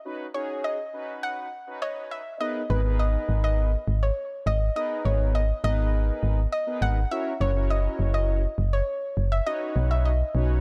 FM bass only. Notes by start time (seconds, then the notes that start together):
2.70 G#1
3.29 G#1
3.88 G#1
4.46 G#1
5.05 G#1
5.64 G#1
6.23 G#1
6.82 G#1
7.41 F#1
7.99 F#1
8.58 F#1
9.17 F#1
9.76 B1
10.35 B1